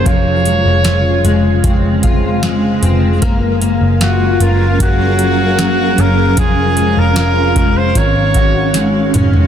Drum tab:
HH |x-x-x-x-x-x-x-x-|x-x-x-x-x-x-x-x-|x-x-x-x-x-x-x-x-|
SD |----o-------o---|----o-------o---|----o-------o---|
T2 |----------------|----------------|--------------o-|
FT |----------------|----------------|---------------o|
BD |o-------o-o-----|o-------o-------|o-----o-o-o-----|